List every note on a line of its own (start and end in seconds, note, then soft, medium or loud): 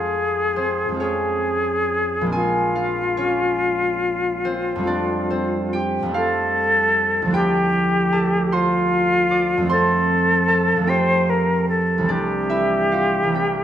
0.00 0.87 F2 soft
0.00 0.90 G#3 soft
0.00 0.56 C4 soft
0.00 0.95 F4 medium
0.00 0.98 G#4 medium
0.00 0.55 C5 medium
0.00 2.74 F5 medium
0.56 0.93 C4 medium
0.56 4.44 C5 medium
0.89 2.32 F2 soft
0.89 2.23 G#3 soft
0.94 2.28 C4 soft
0.94 2.30 F4 soft
1.00 3.17 C#4 medium
1.00 2.31 G#4 medium
1.00 3.16 C#5 medium
2.21 4.85 A#1 medium
2.21 4.86 G#3 soft
2.26 4.87 A#3 soft
2.26 4.44 C4 soft
2.32 2.75 F4 soft
2.32 5.85 F4 medium
2.32 4.91 G#4 medium
2.32 4.90 G#5 medium
2.75 4.84 F4 medium
2.75 6.13 F5 medium
3.17 4.91 C#4 medium
3.17 4.90 C#5 medium
4.45 4.82 C4 medium
4.45 5.29 C5 medium
4.76 6.01 F2 medium
4.76 6.04 G3 soft
4.80 6.07 A3 soft
4.80 5.30 C4 medium
4.85 7.29 D4 medium
4.85 6.14 F4 medium
4.85 5.62 D5 medium
5.30 6.10 C4 medium
5.30 7.38 C5 medium
5.73 7.34 G4 medium
5.73 7.33 G5 medium
6.03 7.32 F2 medium
6.03 7.33 G3 soft
6.08 7.26 A3 soft
6.08 7.36 C4 soft
6.14 9.66 F4 medium
6.14 7.31 A4 medium
6.14 10.04 F5 medium
7.22 9.69 D2 medium
7.22 9.59 F3 medium
7.27 9.61 A3 soft
7.27 9.73 D4 soft
7.33 9.74 E4 medium
7.33 8.55 G4 medium
7.33 10.88 G4 medium
7.33 8.69 G5 loud
8.12 10.48 A4 medium
8.12 10.47 A5 medium
8.52 9.71 F4 medium
8.52 9.69 C5 medium
8.52 9.68 C6 medium
9.31 9.75 D5 medium
9.31 9.74 D6 medium
9.57 10.75 F2 medium
9.57 10.77 F3 soft
9.62 10.80 A3 soft
9.62 10.83 C4 soft
9.67 10.85 F4 soft
9.67 13.60 C5 medium
9.67 13.59 C6 loud
9.72 10.91 A4 medium
10.48 13.64 A4 medium
10.48 13.64 A5 medium
10.76 12.07 F2 soft
10.76 12.08 F3 soft
10.82 12.01 A3 soft
10.82 12.04 C4 soft
10.87 12.12 F4 soft
10.87 13.35 G4 medium
10.87 11.31 C5 medium
10.87 13.34 G5 medium
11.30 11.68 A#4 medium
11.69 12.13 A4 medium
11.98 13.22 C2 medium
11.98 13.25 E3 soft
12.03 13.27 A3 soft
12.03 13.30 C4 soft
12.09 13.33 D4 medium
12.09 13.64 G4 medium
12.09 13.64 D5 medium
12.50 13.64 E4 medium
12.50 13.64 E5 medium
12.92 13.64 F4 medium
12.92 13.64 F5 medium
13.23 13.64 C2 soft
13.23 13.64 E3 soft
13.28 13.64 A3 soft
13.28 13.64 C4 soft
13.34 13.64 D4 soft
13.34 13.64 G4 soft
13.34 13.64 G5 medium